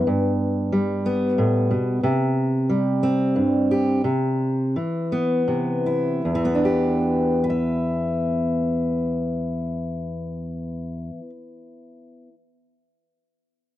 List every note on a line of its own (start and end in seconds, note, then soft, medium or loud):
0.07 1.38 G2 medium
0.72 2.00 G3 soft
1.06 2.00 B3 medium
1.38 1.71 A2 medium
1.71 2.03 B2 soft
2.03 3.36 C3 medium
2.69 4.01 G3 soft
3.03 4.01 C4 soft
3.36 4.00 G2 soft
3.71 4.01 G4 soft
4.04 4.75 C3 medium
4.76 6.34 E3 soft
5.12 6.21 B3 soft
5.48 6.21 C3 soft
5.86 6.65 E4 soft
6.25 11.09 E2 soft
6.35 11.19 E3 soft
6.45 11.29 B3 soft
6.55 7.43 D4 soft
6.65 7.49 G4 soft
7.44 12.28 B4 medium
7.50 12.34 E5 soft